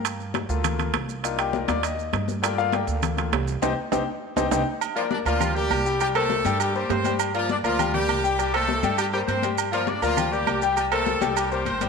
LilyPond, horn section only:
\new Staff \with { instrumentName = "Horn section" } { \time 4/4 \key g \minor \tempo 4 = 202 r1 | r1 | r1 | r1 |
r8 <f f'>8 <d' d''>8 <f f'>4 <g g'>4. | <g g'>8 <a a'>4. <g g'>8 <g g'>8 <c' c''>8. r16 | r8 <f f'>8 <d' d''>8 <f f'>4 <g g'>4. | <g g'>8 <a a'>4. <g g'>8 <g g'>8 <c' c''>8. r16 |
r8 <f f'>8 <d' d''>8 <f f'>4 <g g'>4. | <g g'>8 <a a'>4. <g g'>8 <g g'>8 <c' c''>8. r16 | }